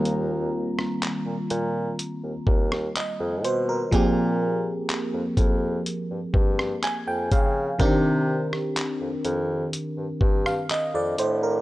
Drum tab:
HH |x---x-x-x---x-x-|x---x-x-x---x-x-|x---x-x-x---x-x-|
CP |----x-------x---|----x-------x---|----x-------x---|
SD |---r-------r----|-----------r----|---r-------r----|
BD |----------o-----|o-----o---o---o-|o---------o-----|